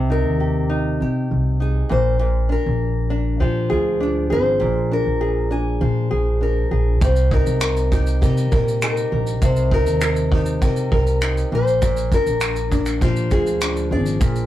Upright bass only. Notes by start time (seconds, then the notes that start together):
Already playing: C2
0.26 D#2
1.01 C3
1.31 C2
1.91 A#1
2.66 A#1
3.40 A#2
3.71 D2
4.31 G#1
4.61 A#1
5.06 A#1
5.81 A#2
6.12 A#1
6.71 A#1
7.01 C2
7.47 C2
8.22 C3
8.52 A#2
9.12 A#1
9.42 C2
9.86 D#2
10.62 C3
10.92 C2
11.52 A#1
12.26 A#1
13.01 A#2
13.32 D2
13.91 G#1
14.21 A#1